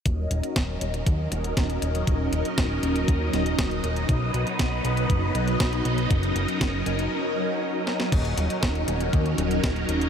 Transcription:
<<
  \new Staff \with { instrumentName = "String machine" } { \time 4/4 \key ees \minor \tempo 4 = 119 << { <ges ees' ees''>1~ | <ges ees' ees''>1~ | <ges ees' ees''>1~ | <ges ees' ees''>1 |
<ges ees' ees''>1 | } \\ { <des' bes'>1~ | <des' bes'>1 | <b b'>1 | <des' bes'>1 |
<des' bes'>1 | } >> }
  \new Staff \with { instrumentName = "Analog synth bass" } { \clef bass \time 4/4 \key ees \minor ees,,8 ees,,8 ees,,8 ees,,8 ees,8 ees,,8 ees,,8 ees,,8 | ees,,8 ees,,8 ees,,8 ees,,8 ees,8 ees,,8 ees,,8 ees,,8 | b,,8 b,,8 b,,8 b,,8 fis,,8 b,,8 b,,8 b,,8 | ges,,8 ges,,8 ges,,8 ges,,8 r2 |
ees,,8 ees,,8 ees,,8 ees,,8 ees,8 ees,,8 ees,,8 ees,,8 | }
  \new DrumStaff \with { instrumentName = "Drums" } \drummode { \time 4/4 <hh bd>8 hh16 hh16 <hh bd sn>8 hh16 hh16 <hh bd>8 hh16 hh16 <hh bd sn>16 hh16 hh16 hh16 | <hh bd>8 hh16 hh16 <hh bd sn>8 hh16 hh16 <hh bd>8 <hh sn>16 hh16 <hh bd sn>16 hh16 hh16 hh16 | <hh bd>8 hh16 hh16 <hh bd sn>8 hh16 hh16 <hh bd>8 hh16 hh16 <hh bd sn>16 hh16 hh16 hh16 | <hh bd>16 hh16 hh16 hh16 <hh bd sn>8 hh16 hh16 r4 r8 sn16 sn16 |
<cymc hh bd>16 hh16 hh16 hh16 <hh bd sn>16 hh16 hh16 hh16 <hh bd>16 hh16 hh16 hh16 <hh bd sn>16 hh16 hh16 hh16 | }
>>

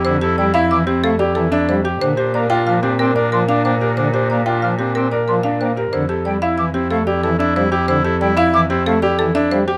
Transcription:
<<
  \new Staff \with { instrumentName = "Flute" } { \time 6/4 \key f \major \tempo 4 = 184 r4 g''8 r8 d'''8 r8 f''8 r8 a''8 r8 f''8 r8 | r4 bes''8 r8 f'''8 r8 g''8 r8 c'''8 r8 g''8 r8 | r4 bes''8 r8 f'''8 r8 g''8 r8 c'''8 r8 g''8 r8 | r4 g''8 r8 d'''8 r8 f''8 r8 a''8 r8 f''8 r8 |
r4 g''8 r8 d'''8 r8 f''8 r8 a''8 r8 f''8 r8 | }
  \new Staff \with { instrumentName = "Marimba" } { \time 6/4 \key f \major c''8 g'8 d''8 f''8 e''8 g'8 a'8 d''8 a'8 e''8 c''8 g'8 | c''8 g'8 d''8 g''8 f''8 g'8 bes'8 d''8 bes'8 f''8 c''8 g'8 | c''8 g'8 d''8 g''8 f''8 g'8 bes'8 d''8 bes'8 f''8 c''8 g'8 | c''8 g'8 d''8 f''8 e''8 g'8 a'8 d''8 a'8 e''8 c''8 g'8 |
c''8 g'8 d''8 f''8 e''8 g'8 a'8 d''8 a'8 e''8 c''8 g'8 | }
  \new Staff \with { instrumentName = "Grand piano" } { \time 6/4 \key f \major r8 a'8 r8 e'8 r8 c'8 r8 g'8 r8 d'8 r8 g'8 | r8 c''8 r8 f'8 r8 c'8 r8 bes'8 r8 d'8 r8 bes'8 | r8 c''8 r8 f'8 r8 c'8 r8 bes'8 r8 d'8 r8 bes'8 | r8 a'8 r8 e'8 r8 c'8 r8 g'8 r8 d'8 r8 g'8 |
r8 a'8 r8 e'8 r8 c'8 r8 g'8 r8 d'8 r8 g'8 | }
  \new Staff \with { instrumentName = "Oboe" } { \time 6/4 \key f \major e'8 e'8 e'8 e'8 e'8 e'8 e'8 e'8 e'8 e'8 e'8 r8 | d'8 d'8 d'8 d'8 d'8 d'8 d'8 d'8 d'8 d'8 d'8 d'8 | d'8 d'8 d'8 d'8 d'8 d'8 d'8 d'8 d'8 d'8 d'8 r8 | e'8 e'8 e'8 e'8 e'8 e'8 e'8 e'8 e'8 e'8 e'8 e'8 |
e'8 e'8 e'8 e'8 e'8 e'8 e'8 e'8 e'8 e'8 e'8 r8 | }
  \new Staff \with { instrumentName = "Pipe organ" } { \clef bass \time 6/4 \key f \major d8 r8 g8 r8 e8 r8 a8 r8 e8 r8 g8 r8 | d8 r8 bes8 r8 f8 r8 c'8 r8 f8 r8 bes8 r8 | d8 r8 bes8 r8 f8 r8 c'8 r8 f8 r8 bes8 r8 | d8 r8 g8 r8 e8 r8 a8 r8 e8 r8 g8 r8 |
d8 r8 g8 r8 e8 r8 a8 r8 e8 r8 g8 r8 | }
  \new Staff \with { instrumentName = "Cello" } { \clef bass \time 6/4 \key f \major f,1. | bes,1.~ | bes,1. | f,1.~ |
f,1. | }
>>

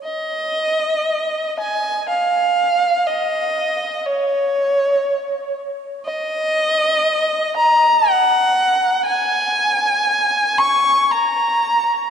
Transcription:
\new Staff \with { instrumentName = "Violin" } { \time 3/4 \key ees \dorian \tempo 4 = 60 ees''4. aes''8 f''4 | ees''4 des''4. r8 | ees''4. bes''8 ges''4 | aes''4. des'''8 bes''4 | }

